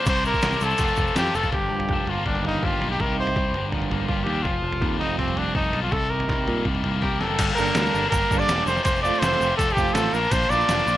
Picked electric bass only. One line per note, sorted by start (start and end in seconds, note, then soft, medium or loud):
0.06 0.31 C2 loud
0.44 0.56 C2 loud
0.61 0.73 C2 medium
0.79 0.91 F1 medium
0.98 1.10 F1 medium
1.16 1.28 F2 medium
1.35 1.47 F1 medium
1.53 1.69 G1 medium
1.71 1.88 G1 medium
1.89 2.06 F1 medium
2.07 2.26 G1 medium
2.26 2.59 G1 medium
2.63 2.79 G1 medium
2.81 2.97 B1 medium
3.00 3.33 C2 medium
3.37 3.53 C2 medium
3.54 3.71 G1 medium
3.72 3.89 G1 medium
3.90 4.07 G1 medium
4.09 4.25 G1 medium
4.26 4.43 D#2 medium
4.45 4.62 F1 medium
4.62 4.80 F1 medium
4.81 4.98 D#2 medium
5.00 5.17 F1 medium
5.19 5.52 F1 medium
5.55 5.72 F1 medium
5.74 5.91 B1 medium
5.92 6.25 C2 medium
6.29 6.46 C2 medium
6.48 6.64 A#2 medium
6.66 6.82 C2 medium
6.84 7.01 C2 medium
7.03 7.19 C2 medium
7.21 7.38 F#1 medium
7.39 7.51 G1 loud
7.59 7.70 G1 medium
7.76 7.88 D2 loud
7.95 8.06 G1 medium
8.12 8.24 G1 loud
8.31 8.43 G1 medium
8.49 8.61 E1 medium
8.66 8.79 F1 medium
8.86 9.10 F1 medium
9.22 9.34 F1 medium
9.41 9.53 F1 medium
9.59 9.71 F1 medium
9.77 9.89 F1 medium
9.95 10.07 A1 medium
10.13 10.25 A#1 medium
10.31 10.44 A#1 loud
10.50 10.62 A#1 medium
10.69 10.81 F1 loud
10.87 10.97 A#1 loud